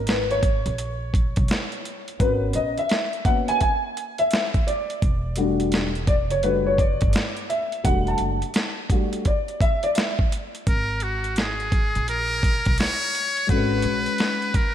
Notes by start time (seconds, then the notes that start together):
Already playing: G#1
0.07 B4, snare, closed hi-hat
0.31 C#5, closed hi-hat
0.43 kick, closed hi-hat
0.66 A#1, closed hi-hat
0.78 closed hi-hat
1.14 kick, closed hi-hat
1.36 B1, kick, closed hi-hat
1.48 snare, closed hi-hat
1.72 closed hi-hat
1.85 closed hi-hat
2.08 closed hi-hat
2.19 G#1 B3 C#4 F#4 A#4 B4, kick, closed hi-hat
2.53 A#1 D#5, closed hi-hat
2.78 E5, closed hi-hat
2.89 snare, closed hi-hat
3.13 closed hi-hat
3.25 A#3 B3 C#4 F#4 F#5, kick, closed hi-hat
3.48 G#5, closed hi-hat
3.61 G#5, kick, closed hi-hat
3.97 closed hi-hat
4.18 E5, closed hi-hat
4.31 snare, closed hi-hat
4.54 kick, closed hi-hat
4.67 D5, closed hi-hat
4.90 closed hi-hat
5.02 E1, kick, closed hi-hat
5.36 G3 A3 D4 F#4, closed hi-hat
5.60 closed hi-hat
5.72 snare, closed hi-hat
5.95 closed hi-hat
6.07 D5, kick, closed hi-hat
6.30 F#1 C#5, closed hi-hat
6.43 G3 A3 D4 F#4 B4, closed hi-hat
6.67 C#5
6.78 D5, kick, closed hi-hat
7.01 G1, kick, closed hi-hat
7.13 snare, closed hi-hat
7.37 closed hi-hat
7.49 E5, closed hi-hat
7.72 closed hi-hat
7.84 E1 G3 A3 D4 F#4 F#5, kick, closed hi-hat
8.07 A5, closed hi-hat
8.18 F#1, closed hi-hat
8.42 closed hi-hat
8.54 snare, closed hi-hat
8.90 G3 A3 D4 F#4, kick, closed hi-hat
9.13 closed hi-hat
9.25 D5, kick, closed hi-hat
9.48 closed hi-hat
9.61 E5, kick, closed hi-hat
9.83 D5, closed hi-hat
9.95 E5, snare, closed hi-hat
10.19 kick
10.32 closed hi-hat
10.55 closed hi-hat
10.67 G#1 A#4, kick, closed hi-hat
11.00 F#4, closed hi-hat
11.24 closed hi-hat
11.36 G#4, snare, closed hi-hat
11.60 closed hi-hat
11.72 kick, closed hi-hat
11.95 A#1, closed hi-hat
12.08 A#4, closed hi-hat
12.43 kick, closed hi-hat
12.65 B1, kick, closed hi-hat
12.78 C#5, snare, closed hi-hat
13.02 closed hi-hat
13.15 closed hi-hat
13.37 closed hi-hat
13.47 G#1 G#3 C#4 F#4 A4 B4, kick, closed hi-hat
13.57 B4
13.82 A#1, closed hi-hat
14.06 closed hi-hat
14.18 snare, closed hi-hat
14.42 closed hi-hat
14.54 A#4, kick, closed hi-hat